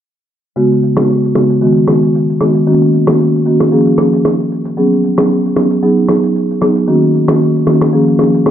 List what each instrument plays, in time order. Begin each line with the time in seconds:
0.56 marimba C#3 G#3 B3 F#4, shaker
0.71 shaker
0.82 shaker
0.97 marimba C#3 G#3 B3 F#4, cross-stick, shaker
1.10 shaker
1.24 shaker
1.35 marimba C#3 G#3 B3 F#4, cross-stick, shaker
1.49 shaker
1.61 marimba D#3 G#3 B3 F#4, shaker
1.76 shaker
1.88 marimba D#3 G#3 B3 F#4, cross-stick, shaker
2.02 shaker
2.15 shaker
2.29 shaker
2.41 marimba D#3 G#3 B3 F#4, cross-stick, shaker
2.54 shaker
2.67 marimba D#3 A#3 C#4 F#4, shaker
2.82 shaker
2.93 shaker
3.07 marimba D#3 A#3 C#4 F#4, cross-stick, shaker
3.20 shaker
3.35 shaker
3.46 marimba D#3 A#3 C#4 F#4, shaker
3.60 cross-stick, shaker
3.72 marimba F3 A#3 C#4 G#4, shaker
3.86 shaker
3.98 marimba F3 A#3 C#4 G#4, cross-stick, shaker
4.13 shaker
4.25 cross-stick, shaker
4.40 shaker
4.51 shaker
4.65 shaker
4.77 marimba F#3 B3 C#4 G#4, shaker
4.92 shaker
5.03 shaker
5.18 marimba F#3 B3 C#4 G#4, cross-stick, shaker
5.31 shaker
5.45 shaker
5.56 marimba F#3 B3 C#4 G#4, cross-stick, shaker
5.70 shaker
5.83 marimba F#3 B3 D#4 G#4, shaker
5.97 shaker
6.09 marimba F#3 B3 D#4 G#4, cross-stick, shaker
6.23 shaker
6.35 shaker
6.50 shaker
6.61 marimba F#3 B3 D#4 G#4, cross-stick, shaker
6.75 shaker
6.88 marimba D#3 A#3 C#4 F#4, shaker
7.03 shaker
7.14 shaker
7.28 marimba D#3 A#3 C#4 F#4, cross-stick, shaker
7.41 shaker
7.56 shaker
7.67 marimba D#3 A#3 C#4 F#4, cross-stick, shaker
7.81 cross-stick, shaker
7.93 marimba F3 A#3 C#4 G#4, shaker
8.07 shaker
8.19 marimba F3 A#3 C#4 G#4, cross-stick, shaker
8.34 shaker
8.46 cross-stick, shaker